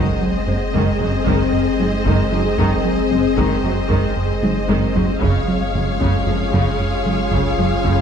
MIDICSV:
0, 0, Header, 1, 11, 480
1, 0, Start_track
1, 0, Tempo, 526316
1, 2355, Time_signature, 5, 2, 24, 8
1, 7308, End_track
2, 0, Start_track
2, 0, Title_t, "Violin section"
2, 0, Program_c, 0, 48
2, 0, Note_on_c, 0, 72, 63
2, 0, Note_on_c, 0, 75, 68
2, 4717, Note_off_c, 0, 72, 0
2, 4720, Note_off_c, 0, 75, 0
2, 4757, Note_on_c, 0, 73, 66
2, 4761, Note_on_c, 0, 77, 72
2, 7308, Note_off_c, 0, 73, 0
2, 7308, Note_off_c, 0, 77, 0
2, 7308, End_track
3, 0, Start_track
3, 0, Title_t, "Ambient pad"
3, 0, Program_c, 1, 92
3, 0, Note_on_c, 1, 56, 67
3, 0, Note_on_c, 1, 60, 71
3, 0, Note_on_c, 1, 68, 69
3, 0, Note_on_c, 1, 75, 70
3, 4718, Note_off_c, 1, 68, 0
3, 4744, Note_off_c, 1, 56, 0
3, 4754, Note_on_c, 1, 68, 68
3, 4754, Note_on_c, 1, 77, 67
3, 4755, Note_off_c, 1, 60, 0
3, 4755, Note_off_c, 1, 75, 0
3, 4755, Note_on_c, 1, 56, 65
3, 4756, Note_on_c, 1, 61, 68
3, 7308, Note_off_c, 1, 56, 0
3, 7308, Note_off_c, 1, 61, 0
3, 7308, Note_off_c, 1, 68, 0
3, 7308, Note_off_c, 1, 77, 0
3, 7308, End_track
4, 0, Start_track
4, 0, Title_t, "French horn section"
4, 0, Program_c, 2, 60
4, 0, Note_on_c, 2, 60, 70
4, 0, Note_on_c, 2, 68, 77
4, 4612, Note_off_c, 2, 60, 0
4, 4612, Note_off_c, 2, 68, 0
4, 4767, Note_on_c, 2, 65, 80
4, 4769, Note_on_c, 2, 61, 76
4, 7308, Note_off_c, 2, 61, 0
4, 7308, Note_off_c, 2, 65, 0
4, 7308, End_track
5, 0, Start_track
5, 0, Title_t, "Synth pluck"
5, 0, Program_c, 3, 84
5, 0, Note_on_c, 3, 56, 79
5, 101, Note_off_c, 3, 56, 0
5, 441, Note_on_c, 3, 60, 62
5, 583, Note_off_c, 3, 60, 0
5, 677, Note_on_c, 3, 56, 84
5, 821, Note_off_c, 3, 56, 0
5, 919, Note_on_c, 3, 60, 59
5, 1062, Note_off_c, 3, 60, 0
5, 1158, Note_on_c, 3, 56, 86
5, 1301, Note_off_c, 3, 56, 0
5, 1639, Note_on_c, 3, 63, 58
5, 1782, Note_off_c, 3, 63, 0
5, 1879, Note_on_c, 3, 56, 79
5, 2022, Note_off_c, 3, 56, 0
5, 2119, Note_on_c, 3, 63, 68
5, 2262, Note_off_c, 3, 63, 0
5, 2359, Note_on_c, 3, 56, 88
5, 2502, Note_off_c, 3, 56, 0
5, 2839, Note_on_c, 3, 60, 63
5, 2982, Note_off_c, 3, 60, 0
5, 3081, Note_on_c, 3, 56, 88
5, 3223, Note_off_c, 3, 56, 0
5, 3322, Note_on_c, 3, 60, 58
5, 3464, Note_off_c, 3, 60, 0
5, 3562, Note_on_c, 3, 56, 90
5, 3704, Note_off_c, 3, 56, 0
5, 4042, Note_on_c, 3, 63, 56
5, 4184, Note_off_c, 3, 63, 0
5, 4280, Note_on_c, 3, 56, 80
5, 4423, Note_off_c, 3, 56, 0
5, 4523, Note_on_c, 3, 63, 60
5, 4664, Note_off_c, 3, 63, 0
5, 4761, Note_on_c, 3, 49, 83
5, 4903, Note_off_c, 3, 49, 0
5, 5242, Note_on_c, 3, 53, 64
5, 5384, Note_off_c, 3, 53, 0
5, 5480, Note_on_c, 3, 49, 89
5, 5622, Note_off_c, 3, 49, 0
5, 5718, Note_on_c, 3, 53, 57
5, 5861, Note_off_c, 3, 53, 0
5, 5961, Note_on_c, 3, 49, 79
5, 6103, Note_off_c, 3, 49, 0
5, 6440, Note_on_c, 3, 56, 54
5, 6583, Note_off_c, 3, 56, 0
5, 6673, Note_on_c, 3, 49, 73
5, 6818, Note_off_c, 3, 49, 0
5, 6919, Note_on_c, 3, 56, 60
5, 7062, Note_off_c, 3, 56, 0
5, 7158, Note_on_c, 3, 49, 71
5, 7301, Note_off_c, 3, 49, 0
5, 7308, End_track
6, 0, Start_track
6, 0, Title_t, "Viola section"
6, 0, Program_c, 4, 48
6, 0, Note_on_c, 4, 51, 67
6, 0, Note_on_c, 4, 68, 66
6, 179, Note_off_c, 4, 51, 0
6, 445, Note_on_c, 4, 56, 50
6, 518, Note_off_c, 4, 56, 0
6, 679, Note_on_c, 4, 51, 72
6, 900, Note_off_c, 4, 51, 0
6, 922, Note_on_c, 4, 54, 53
6, 995, Note_off_c, 4, 54, 0
6, 1164, Note_on_c, 4, 51, 78
6, 1383, Note_off_c, 4, 51, 0
6, 1643, Note_on_c, 4, 56, 57
6, 1715, Note_off_c, 4, 56, 0
6, 1880, Note_on_c, 4, 51, 72
6, 2101, Note_off_c, 4, 51, 0
6, 2126, Note_on_c, 4, 54, 62
6, 2199, Note_off_c, 4, 54, 0
6, 2360, Note_on_c, 4, 51, 85
6, 2581, Note_off_c, 4, 51, 0
6, 2841, Note_on_c, 4, 56, 51
6, 2914, Note_off_c, 4, 56, 0
6, 3077, Note_on_c, 4, 51, 75
6, 3299, Note_off_c, 4, 51, 0
6, 3314, Note_on_c, 4, 54, 57
6, 3387, Note_off_c, 4, 54, 0
6, 3556, Note_on_c, 4, 51, 80
6, 3779, Note_off_c, 4, 51, 0
6, 4038, Note_on_c, 4, 56, 64
6, 4111, Note_off_c, 4, 56, 0
6, 4274, Note_on_c, 4, 51, 77
6, 4498, Note_off_c, 4, 51, 0
6, 4516, Note_on_c, 4, 54, 61
6, 4589, Note_off_c, 4, 54, 0
6, 4719, Note_off_c, 4, 68, 0
6, 4755, Note_on_c, 4, 49, 77
6, 4759, Note_on_c, 4, 68, 69
6, 4978, Note_off_c, 4, 49, 0
6, 5233, Note_on_c, 4, 56, 47
6, 5306, Note_off_c, 4, 56, 0
6, 5478, Note_on_c, 4, 49, 67
6, 5700, Note_off_c, 4, 49, 0
6, 5727, Note_on_c, 4, 53, 47
6, 5800, Note_off_c, 4, 53, 0
6, 5961, Note_on_c, 4, 49, 71
6, 6181, Note_off_c, 4, 49, 0
6, 6440, Note_on_c, 4, 56, 56
6, 6513, Note_off_c, 4, 56, 0
6, 6682, Note_on_c, 4, 49, 60
6, 6902, Note_off_c, 4, 49, 0
6, 6913, Note_on_c, 4, 53, 53
6, 6986, Note_off_c, 4, 53, 0
6, 7150, Note_on_c, 4, 49, 62
6, 7308, Note_off_c, 4, 49, 0
6, 7308, Note_off_c, 4, 68, 0
6, 7308, End_track
7, 0, Start_track
7, 0, Title_t, "Analog synth bass"
7, 0, Program_c, 5, 38
7, 0, Note_on_c, 5, 42, 96
7, 92, Note_off_c, 5, 42, 0
7, 193, Note_on_c, 5, 54, 62
7, 338, Note_off_c, 5, 54, 0
7, 430, Note_on_c, 5, 42, 59
7, 576, Note_off_c, 5, 42, 0
7, 673, Note_on_c, 5, 42, 87
7, 817, Note_off_c, 5, 42, 0
7, 916, Note_on_c, 5, 42, 63
7, 1060, Note_off_c, 5, 42, 0
7, 1158, Note_on_c, 5, 42, 84
7, 1301, Note_off_c, 5, 42, 0
7, 1397, Note_on_c, 5, 42, 55
7, 1540, Note_off_c, 5, 42, 0
7, 1636, Note_on_c, 5, 54, 59
7, 1780, Note_off_c, 5, 54, 0
7, 1877, Note_on_c, 5, 42, 94
7, 2020, Note_off_c, 5, 42, 0
7, 2118, Note_on_c, 5, 54, 60
7, 2261, Note_off_c, 5, 54, 0
7, 2360, Note_on_c, 5, 42, 95
7, 2503, Note_off_c, 5, 42, 0
7, 2597, Note_on_c, 5, 54, 66
7, 2741, Note_off_c, 5, 54, 0
7, 2840, Note_on_c, 5, 42, 61
7, 2983, Note_off_c, 5, 42, 0
7, 3078, Note_on_c, 5, 42, 85
7, 3221, Note_off_c, 5, 42, 0
7, 3316, Note_on_c, 5, 42, 63
7, 3460, Note_off_c, 5, 42, 0
7, 3556, Note_on_c, 5, 42, 81
7, 3700, Note_off_c, 5, 42, 0
7, 3797, Note_on_c, 5, 42, 60
7, 3940, Note_off_c, 5, 42, 0
7, 4041, Note_on_c, 5, 54, 62
7, 4183, Note_off_c, 5, 54, 0
7, 4276, Note_on_c, 5, 42, 81
7, 4420, Note_off_c, 5, 42, 0
7, 4526, Note_on_c, 5, 54, 61
7, 4667, Note_off_c, 5, 54, 0
7, 4762, Note_on_c, 5, 42, 93
7, 4904, Note_off_c, 5, 42, 0
7, 4998, Note_on_c, 5, 54, 67
7, 5141, Note_off_c, 5, 54, 0
7, 5244, Note_on_c, 5, 42, 60
7, 5386, Note_off_c, 5, 42, 0
7, 5476, Note_on_c, 5, 42, 87
7, 5620, Note_off_c, 5, 42, 0
7, 5717, Note_on_c, 5, 42, 62
7, 5860, Note_off_c, 5, 42, 0
7, 5956, Note_on_c, 5, 42, 77
7, 6100, Note_off_c, 5, 42, 0
7, 6194, Note_on_c, 5, 42, 58
7, 6338, Note_off_c, 5, 42, 0
7, 6438, Note_on_c, 5, 54, 56
7, 6581, Note_off_c, 5, 54, 0
7, 6672, Note_on_c, 5, 42, 83
7, 6817, Note_off_c, 5, 42, 0
7, 6916, Note_on_c, 5, 54, 53
7, 7060, Note_off_c, 5, 54, 0
7, 7157, Note_on_c, 5, 42, 79
7, 7300, Note_off_c, 5, 42, 0
7, 7308, End_track
8, 0, Start_track
8, 0, Title_t, "Cello section"
8, 0, Program_c, 6, 48
8, 436, Note_on_c, 6, 42, 50
8, 509, Note_off_c, 6, 42, 0
8, 678, Note_on_c, 6, 42, 74
8, 751, Note_off_c, 6, 42, 0
8, 922, Note_on_c, 6, 42, 53
8, 995, Note_off_c, 6, 42, 0
8, 1161, Note_on_c, 6, 42, 83
8, 1234, Note_off_c, 6, 42, 0
8, 1642, Note_on_c, 6, 42, 54
8, 1715, Note_off_c, 6, 42, 0
8, 1875, Note_on_c, 6, 42, 83
8, 1948, Note_off_c, 6, 42, 0
8, 2120, Note_on_c, 6, 42, 58
8, 2193, Note_off_c, 6, 42, 0
8, 2360, Note_on_c, 6, 42, 77
8, 2433, Note_off_c, 6, 42, 0
8, 2844, Note_on_c, 6, 42, 52
8, 2917, Note_off_c, 6, 42, 0
8, 3075, Note_on_c, 6, 42, 75
8, 3148, Note_off_c, 6, 42, 0
8, 3322, Note_on_c, 6, 42, 58
8, 3395, Note_off_c, 6, 42, 0
8, 3561, Note_on_c, 6, 42, 74
8, 3634, Note_off_c, 6, 42, 0
8, 4040, Note_on_c, 6, 42, 55
8, 4113, Note_off_c, 6, 42, 0
8, 4276, Note_on_c, 6, 42, 83
8, 4349, Note_off_c, 6, 42, 0
8, 4513, Note_on_c, 6, 42, 53
8, 4586, Note_off_c, 6, 42, 0
8, 4756, Note_on_c, 6, 42, 76
8, 4829, Note_off_c, 6, 42, 0
8, 5241, Note_on_c, 6, 42, 50
8, 5314, Note_off_c, 6, 42, 0
8, 5479, Note_on_c, 6, 42, 71
8, 5552, Note_off_c, 6, 42, 0
8, 5719, Note_on_c, 6, 42, 53
8, 5792, Note_off_c, 6, 42, 0
8, 5949, Note_on_c, 6, 42, 75
8, 6022, Note_off_c, 6, 42, 0
8, 6433, Note_on_c, 6, 42, 47
8, 6506, Note_off_c, 6, 42, 0
8, 6677, Note_on_c, 6, 42, 67
8, 6750, Note_off_c, 6, 42, 0
8, 6917, Note_on_c, 6, 42, 49
8, 6990, Note_off_c, 6, 42, 0
8, 7150, Note_on_c, 6, 42, 72
8, 7223, Note_off_c, 6, 42, 0
8, 7308, End_track
9, 0, Start_track
9, 0, Title_t, "Double bass section"
9, 0, Program_c, 7, 48
9, 440, Note_on_c, 7, 30, 53
9, 513, Note_off_c, 7, 30, 0
9, 680, Note_on_c, 7, 30, 76
9, 752, Note_off_c, 7, 30, 0
9, 918, Note_on_c, 7, 30, 51
9, 991, Note_off_c, 7, 30, 0
9, 1159, Note_on_c, 7, 30, 85
9, 1232, Note_off_c, 7, 30, 0
9, 1643, Note_on_c, 7, 30, 58
9, 1716, Note_off_c, 7, 30, 0
9, 1881, Note_on_c, 7, 30, 88
9, 1954, Note_off_c, 7, 30, 0
9, 2119, Note_on_c, 7, 30, 57
9, 2192, Note_off_c, 7, 30, 0
9, 2361, Note_on_c, 7, 30, 81
9, 2434, Note_off_c, 7, 30, 0
9, 2833, Note_on_c, 7, 30, 58
9, 2906, Note_off_c, 7, 30, 0
9, 3076, Note_on_c, 7, 30, 82
9, 3149, Note_off_c, 7, 30, 0
9, 3322, Note_on_c, 7, 30, 58
9, 3395, Note_off_c, 7, 30, 0
9, 3559, Note_on_c, 7, 30, 76
9, 3632, Note_off_c, 7, 30, 0
9, 4037, Note_on_c, 7, 30, 59
9, 4110, Note_off_c, 7, 30, 0
9, 4279, Note_on_c, 7, 30, 86
9, 4352, Note_off_c, 7, 30, 0
9, 4516, Note_on_c, 7, 30, 59
9, 4589, Note_off_c, 7, 30, 0
9, 4752, Note_on_c, 7, 30, 81
9, 4825, Note_off_c, 7, 30, 0
9, 5234, Note_on_c, 7, 30, 56
9, 5307, Note_off_c, 7, 30, 0
9, 5477, Note_on_c, 7, 30, 68
9, 5550, Note_off_c, 7, 30, 0
9, 5720, Note_on_c, 7, 30, 55
9, 5793, Note_off_c, 7, 30, 0
9, 5953, Note_on_c, 7, 30, 71
9, 6026, Note_off_c, 7, 30, 0
9, 6435, Note_on_c, 7, 30, 51
9, 6508, Note_off_c, 7, 30, 0
9, 6678, Note_on_c, 7, 30, 75
9, 6751, Note_off_c, 7, 30, 0
9, 6916, Note_on_c, 7, 30, 48
9, 6989, Note_off_c, 7, 30, 0
9, 7157, Note_on_c, 7, 30, 70
9, 7230, Note_off_c, 7, 30, 0
9, 7308, End_track
10, 0, Start_track
10, 0, Title_t, "Sub bass"
10, 0, Program_c, 8, 38
10, 0, Note_on_c, 8, 30, 72
10, 4721, Note_off_c, 8, 30, 0
10, 4762, Note_on_c, 8, 30, 70
10, 7308, Note_off_c, 8, 30, 0
10, 7308, End_track
11, 0, Start_track
11, 0, Title_t, "Taiko and cinematic ensemble drums"
11, 678, Note_on_c, 9, 41, 80
11, 769, Note_off_c, 9, 41, 0
11, 1158, Note_on_c, 9, 41, 75
11, 1249, Note_off_c, 9, 41, 0
11, 1878, Note_on_c, 9, 41, 72
11, 1970, Note_off_c, 9, 41, 0
11, 2356, Note_on_c, 9, 41, 95
11, 2448, Note_off_c, 9, 41, 0
11, 3081, Note_on_c, 9, 41, 74
11, 3172, Note_off_c, 9, 41, 0
11, 3561, Note_on_c, 9, 41, 77
11, 3652, Note_off_c, 9, 41, 0
11, 4040, Note_on_c, 9, 48, 81
11, 4131, Note_off_c, 9, 48, 0
11, 4279, Note_on_c, 9, 48, 83
11, 4371, Note_off_c, 9, 48, 0
11, 4523, Note_on_c, 9, 43, 80
11, 4614, Note_off_c, 9, 43, 0
11, 4763, Note_on_c, 9, 41, 91
11, 4855, Note_off_c, 9, 41, 0
11, 5481, Note_on_c, 9, 41, 79
11, 5572, Note_off_c, 9, 41, 0
11, 5960, Note_on_c, 9, 41, 76
11, 6051, Note_off_c, 9, 41, 0
11, 6683, Note_on_c, 9, 41, 70
11, 6774, Note_off_c, 9, 41, 0
11, 7158, Note_on_c, 9, 41, 89
11, 7249, Note_off_c, 9, 41, 0
11, 7308, End_track
0, 0, End_of_file